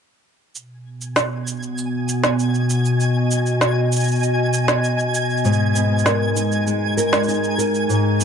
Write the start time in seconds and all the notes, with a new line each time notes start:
0.55 B2 G#5 G#6, cabasa
0.84 B3
1.01 cabasa
1.15 F#4, snare, cabasa
1.47 cabasa
1.63 cabasa
1.78 cabasa
2.09 D#5, cabasa
2.24 snare, cabasa
2.39 cabasa
2.54 cabasa
2.70 cabasa
2.85 cabasa
3.00 cabasa
3.31 cabasa
3.46 cabasa
3.61 snare, cabasa
3.92 cabasa
3.96 cabasa
4.00 cabasa
4.04 cabasa
4.08 cabasa
4.11 cabasa
4.15 cabasa
4.19 cabasa
4.23 cabasa
4.53 cabasa
4.68 snare, cabasa
4.84 cabasa
4.99 cabasa
5.14 cabasa
5.30 cabasa
5.37 cabasa
5.44 G#2 G#3, cabasa
5.53 cabasa
5.71 D#4
5.75 B3, cabasa
5.99 cabasa
6.06 A#4, snare, cabasa
6.36 D#4, cabasa
6.52 cabasa
6.67 G#3, cabasa
6.97 A#4, cabasa
7.03 A#5
7.13 snare, cabasa
7.24 cabasa
7.28 D#4, cabasa
7.44 cabasa
7.58 A#4, cabasa
7.74 cabasa
7.89 G#2, cabasa
8.20 B3, cabasa